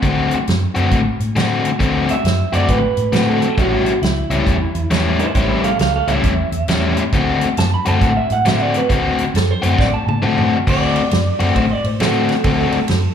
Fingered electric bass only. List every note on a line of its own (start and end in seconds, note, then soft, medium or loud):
0.03 0.30 D2 medium
0.48 0.65 F#2 medium
0.76 0.85 F#2 medium
0.92 1.09 A2 medium
1.20 1.30 A2 medium
1.36 1.63 A2 medium
1.80 2.08 D2 medium
2.24 2.42 F#2 medium
2.52 2.62 F#2 medium
2.69 2.86 A2 medium
2.97 3.07 A2 medium
3.12 3.40 A2 medium
3.58 3.85 A1 medium
4.02 4.19 C#2 medium
4.30 4.40 C#2 medium
4.47 4.64 E2 medium
4.75 4.85 E2 medium
4.91 5.18 E2 medium
5.35 5.63 A1 medium
5.80 5.97 C#2 medium
6.07 6.17 C#2 medium
6.24 6.41 E2 medium
6.52 6.62 E2 medium
6.68 6.95 E2 medium
7.13 7.40 D2 medium
7.58 7.75 F#2 medium
7.86 7.96 F#2 medium
8.02 8.19 A2 medium
8.30 8.40 A2 medium
8.46 8.73 A2 medium
8.90 9.17 D2 medium
9.34 9.52 F#2 medium
9.63 9.73 F#2 medium
9.79 9.96 A2 loud
10.07 10.16 A2 medium
10.23 10.50 A2 medium
10.67 10.95 D2 medium
11.12 11.29 F#2 medium
11.40 11.49 F#2 medium
11.56 11.73 A2 medium
11.84 11.94 A2 medium
12.00 12.28 A2 medium
12.45 12.72 D2 medium
12.89 13.06 F#2 medium